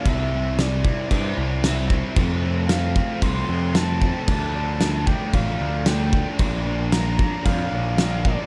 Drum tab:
CC |x-x-x-x-|x-x-x-x-|x-x-x-x-|x-x-x-x-|
SD |--o---o-|--o---o-|--o---o-|--o---o-|
BD |o--oo--o|o--oo--o|o--oo--o|o--oo--o|